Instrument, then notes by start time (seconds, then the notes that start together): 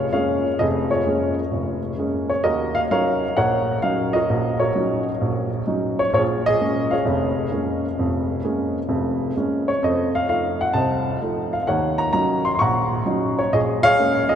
upright piano
Already playing: F4 G#4 C#5
0.13 G#3 A#3 C#4 G#4 C#5 F5
0.59 F1 F2 G#4 D#5
0.90 F4 G#4 C#5
1.06 G#3 A#3 C#4
1.52 F1
1.98 G#3 A#3 C#4
2.30 C#5
2.44 D#2 F#4 A#4 D#5
2.75 F5
2.91 F#3 C#4 D#4 A#4 C#5 F5
3.37 A#1 A#4 C#5 F#5
3.82 F#3 C#4 D#4 F5
4.13 F#4 A#4 D#5
4.29 A#1
4.59 F#4 A#4 C#5
4.75 F#3 C#4 D#4
5.21 A#1
5.67 F#3 C#4 D#4
5.99 C#5
6.10 A#1 C5
6.14 F4 G#4 C#5
6.46 G#4 D#5
6.60 G#3 A#3 C#4
6.91 G#4 C#5 F5
7.05 F1 F2
7.51 G#3 A#3 C#4
7.99 F1 F2
8.44 G#3 A#3 C#4
8.89 F1 F2
9.36 G#3 A#3 C#4
9.68 C#5
9.83 F2 A4 C5 D#5
10.15 F5
10.29 F3 A3 D#4 F5
10.61 F#5
10.73 C2 C5 D#5 A5
11.22 F3 A3 D#4
11.53 F5
11.62 F5
11.67 D#2 D#3 A#4 C#5 F#5
11.98 A#5
12.13 F#3 C#4 D#4 A#5
12.45 C6
12.55 C6
12.59 A#1 F#5 A#5 C#6
13.06 F#3 C#4 D#4
13.39 C#5
13.53 A#1 G#4 D#5
13.83 G#4 C#5 F5
13.99 G#3 A#3 C#4
14.29 G#4 D#5